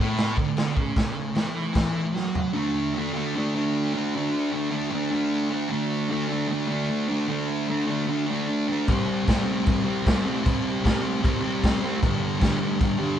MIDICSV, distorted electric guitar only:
0, 0, Header, 1, 2, 480
1, 0, Start_track
1, 0, Tempo, 394737
1, 1183, Time_signature, 4, 2, 24, 8
1, 16044, End_track
2, 0, Start_track
2, 0, Title_t, "Distorted electric guitar"
2, 0, Program_c, 0, 30
2, 0, Note_on_c, 0, 45, 102
2, 464, Note_off_c, 0, 45, 0
2, 473, Note_on_c, 0, 50, 89
2, 928, Note_off_c, 0, 50, 0
2, 928, Note_on_c, 0, 49, 104
2, 1642, Note_off_c, 0, 49, 0
2, 1647, Note_on_c, 0, 52, 94
2, 2101, Note_off_c, 0, 52, 0
2, 2115, Note_on_c, 0, 52, 115
2, 2610, Note_off_c, 0, 52, 0
2, 2610, Note_on_c, 0, 54, 117
2, 3076, Note_off_c, 0, 54, 0
2, 3081, Note_on_c, 0, 50, 90
2, 3105, Note_on_c, 0, 57, 107
2, 3128, Note_on_c, 0, 62, 110
2, 3577, Note_off_c, 0, 50, 0
2, 3581, Note_on_c, 0, 50, 86
2, 3613, Note_off_c, 0, 57, 0
2, 3618, Note_on_c, 0, 57, 105
2, 3629, Note_off_c, 0, 62, 0
2, 3634, Note_on_c, 0, 62, 102
2, 3811, Note_off_c, 0, 62, 0
2, 3816, Note_on_c, 0, 62, 73
2, 3859, Note_off_c, 0, 57, 0
2, 3863, Note_on_c, 0, 57, 66
2, 4077, Note_off_c, 0, 50, 0
2, 4082, Note_on_c, 0, 50, 88
2, 4102, Note_off_c, 0, 57, 0
2, 4107, Note_on_c, 0, 57, 89
2, 4113, Note_off_c, 0, 62, 0
2, 4117, Note_on_c, 0, 62, 92
2, 4313, Note_off_c, 0, 62, 0
2, 4318, Note_on_c, 0, 62, 74
2, 4363, Note_off_c, 0, 57, 0
2, 4368, Note_on_c, 0, 57, 59
2, 4784, Note_off_c, 0, 62, 0
2, 4789, Note_on_c, 0, 62, 68
2, 4833, Note_off_c, 0, 57, 0
2, 4838, Note_on_c, 0, 57, 64
2, 5041, Note_off_c, 0, 50, 0
2, 5045, Note_on_c, 0, 50, 99
2, 5060, Note_off_c, 0, 57, 0
2, 5065, Note_on_c, 0, 57, 99
2, 5071, Note_off_c, 0, 62, 0
2, 5076, Note_on_c, 0, 62, 109
2, 5484, Note_off_c, 0, 50, 0
2, 5489, Note_on_c, 0, 50, 98
2, 5508, Note_off_c, 0, 57, 0
2, 5513, Note_on_c, 0, 57, 95
2, 5530, Note_off_c, 0, 62, 0
2, 5535, Note_on_c, 0, 62, 115
2, 5722, Note_off_c, 0, 62, 0
2, 5727, Note_on_c, 0, 62, 73
2, 5769, Note_off_c, 0, 57, 0
2, 5773, Note_on_c, 0, 57, 58
2, 5962, Note_off_c, 0, 50, 0
2, 5967, Note_on_c, 0, 50, 77
2, 5986, Note_off_c, 0, 57, 0
2, 5990, Note_on_c, 0, 57, 94
2, 6009, Note_off_c, 0, 62, 0
2, 6014, Note_on_c, 0, 62, 90
2, 6205, Note_off_c, 0, 62, 0
2, 6210, Note_on_c, 0, 62, 75
2, 6252, Note_off_c, 0, 57, 0
2, 6257, Note_on_c, 0, 57, 63
2, 6689, Note_off_c, 0, 62, 0
2, 6694, Note_on_c, 0, 62, 71
2, 6731, Note_off_c, 0, 57, 0
2, 6736, Note_on_c, 0, 57, 66
2, 6915, Note_off_c, 0, 50, 0
2, 6919, Note_on_c, 0, 50, 104
2, 6946, Note_off_c, 0, 57, 0
2, 6951, Note_on_c, 0, 57, 97
2, 6961, Note_off_c, 0, 62, 0
2, 6966, Note_on_c, 0, 62, 97
2, 7397, Note_off_c, 0, 50, 0
2, 7402, Note_on_c, 0, 50, 87
2, 7422, Note_off_c, 0, 57, 0
2, 7426, Note_on_c, 0, 57, 98
2, 7445, Note_off_c, 0, 62, 0
2, 7450, Note_on_c, 0, 62, 105
2, 7638, Note_off_c, 0, 62, 0
2, 7643, Note_on_c, 0, 62, 78
2, 7690, Note_off_c, 0, 57, 0
2, 7695, Note_on_c, 0, 57, 61
2, 7872, Note_off_c, 0, 50, 0
2, 7877, Note_on_c, 0, 50, 84
2, 7897, Note_off_c, 0, 57, 0
2, 7912, Note_on_c, 0, 57, 86
2, 7921, Note_off_c, 0, 62, 0
2, 7935, Note_on_c, 0, 62, 98
2, 8101, Note_off_c, 0, 62, 0
2, 8116, Note_on_c, 0, 62, 77
2, 8146, Note_off_c, 0, 57, 0
2, 8161, Note_on_c, 0, 57, 62
2, 8372, Note_off_c, 0, 50, 0
2, 8595, Note_off_c, 0, 62, 0
2, 8610, Note_on_c, 0, 62, 77
2, 8638, Note_off_c, 0, 57, 0
2, 8653, Note_on_c, 0, 57, 59
2, 8848, Note_on_c, 0, 50, 104
2, 8858, Note_off_c, 0, 57, 0
2, 8873, Note_on_c, 0, 57, 99
2, 8884, Note_off_c, 0, 62, 0
2, 8899, Note_on_c, 0, 62, 107
2, 9322, Note_off_c, 0, 50, 0
2, 9337, Note_on_c, 0, 50, 86
2, 9346, Note_off_c, 0, 57, 0
2, 9361, Note_on_c, 0, 57, 104
2, 9364, Note_off_c, 0, 62, 0
2, 9378, Note_on_c, 0, 62, 98
2, 9556, Note_off_c, 0, 62, 0
2, 9571, Note_on_c, 0, 62, 67
2, 9607, Note_off_c, 0, 57, 0
2, 9621, Note_on_c, 0, 57, 61
2, 9795, Note_off_c, 0, 50, 0
2, 9809, Note_on_c, 0, 50, 81
2, 9831, Note_off_c, 0, 57, 0
2, 9840, Note_off_c, 0, 62, 0
2, 9846, Note_on_c, 0, 57, 83
2, 9854, Note_on_c, 0, 62, 96
2, 10038, Note_off_c, 0, 62, 0
2, 10053, Note_on_c, 0, 62, 80
2, 10087, Note_off_c, 0, 57, 0
2, 10101, Note_on_c, 0, 57, 59
2, 10300, Note_off_c, 0, 50, 0
2, 10544, Note_off_c, 0, 62, 0
2, 10559, Note_on_c, 0, 62, 67
2, 10587, Note_off_c, 0, 57, 0
2, 10602, Note_on_c, 0, 57, 61
2, 10780, Note_off_c, 0, 62, 0
2, 10798, Note_on_c, 0, 48, 93
2, 10802, Note_off_c, 0, 57, 0
2, 10818, Note_on_c, 0, 55, 101
2, 10839, Note_on_c, 0, 60, 115
2, 11258, Note_off_c, 0, 48, 0
2, 11263, Note_on_c, 0, 48, 98
2, 11290, Note_off_c, 0, 55, 0
2, 11294, Note_on_c, 0, 55, 102
2, 11302, Note_off_c, 0, 60, 0
2, 11307, Note_on_c, 0, 60, 96
2, 11500, Note_off_c, 0, 60, 0
2, 11504, Note_on_c, 0, 60, 85
2, 11537, Note_off_c, 0, 55, 0
2, 11542, Note_on_c, 0, 55, 58
2, 11723, Note_off_c, 0, 48, 0
2, 11728, Note_on_c, 0, 48, 89
2, 11749, Note_off_c, 0, 55, 0
2, 11754, Note_on_c, 0, 55, 91
2, 11758, Note_off_c, 0, 60, 0
2, 11773, Note_on_c, 0, 60, 89
2, 11954, Note_off_c, 0, 60, 0
2, 11968, Note_on_c, 0, 60, 67
2, 12011, Note_off_c, 0, 55, 0
2, 12016, Note_on_c, 0, 55, 68
2, 12219, Note_off_c, 0, 48, 0
2, 12451, Note_off_c, 0, 60, 0
2, 12465, Note_on_c, 0, 60, 82
2, 12501, Note_off_c, 0, 55, 0
2, 12505, Note_on_c, 0, 55, 64
2, 12687, Note_on_c, 0, 48, 91
2, 12706, Note_off_c, 0, 55, 0
2, 12706, Note_off_c, 0, 60, 0
2, 12711, Note_on_c, 0, 55, 99
2, 12721, Note_on_c, 0, 60, 103
2, 13160, Note_off_c, 0, 48, 0
2, 13174, Note_on_c, 0, 48, 87
2, 13184, Note_off_c, 0, 55, 0
2, 13189, Note_on_c, 0, 55, 96
2, 13202, Note_off_c, 0, 60, 0
2, 13217, Note_on_c, 0, 60, 105
2, 13390, Note_off_c, 0, 60, 0
2, 13405, Note_on_c, 0, 60, 67
2, 13442, Note_off_c, 0, 55, 0
2, 13447, Note_on_c, 0, 55, 61
2, 13627, Note_off_c, 0, 48, 0
2, 13641, Note_on_c, 0, 48, 81
2, 13654, Note_off_c, 0, 55, 0
2, 13659, Note_on_c, 0, 55, 88
2, 13668, Note_off_c, 0, 60, 0
2, 13682, Note_on_c, 0, 60, 83
2, 13856, Note_off_c, 0, 60, 0
2, 13871, Note_on_c, 0, 60, 80
2, 13914, Note_off_c, 0, 55, 0
2, 13919, Note_on_c, 0, 55, 58
2, 14134, Note_off_c, 0, 48, 0
2, 14355, Note_off_c, 0, 60, 0
2, 14369, Note_on_c, 0, 60, 78
2, 14399, Note_off_c, 0, 55, 0
2, 14404, Note_on_c, 0, 55, 57
2, 14597, Note_on_c, 0, 43, 98
2, 14603, Note_off_c, 0, 60, 0
2, 14628, Note_on_c, 0, 50, 106
2, 14644, Note_off_c, 0, 55, 0
2, 14649, Note_on_c, 0, 55, 110
2, 15064, Note_off_c, 0, 43, 0
2, 15069, Note_on_c, 0, 43, 100
2, 15077, Note_off_c, 0, 50, 0
2, 15091, Note_on_c, 0, 50, 102
2, 15106, Note_off_c, 0, 55, 0
2, 15110, Note_on_c, 0, 55, 107
2, 15299, Note_off_c, 0, 55, 0
2, 15304, Note_on_c, 0, 55, 79
2, 15340, Note_off_c, 0, 50, 0
2, 15354, Note_on_c, 0, 50, 58
2, 15543, Note_off_c, 0, 43, 0
2, 15548, Note_on_c, 0, 43, 77
2, 15558, Note_off_c, 0, 50, 0
2, 15573, Note_on_c, 0, 50, 89
2, 15576, Note_off_c, 0, 55, 0
2, 15590, Note_on_c, 0, 55, 98
2, 15779, Note_off_c, 0, 55, 0
2, 15794, Note_on_c, 0, 55, 70
2, 15830, Note_off_c, 0, 50, 0
2, 15844, Note_on_c, 0, 50, 62
2, 16044, Note_off_c, 0, 43, 0
2, 16044, Note_off_c, 0, 50, 0
2, 16044, Note_off_c, 0, 55, 0
2, 16044, End_track
0, 0, End_of_file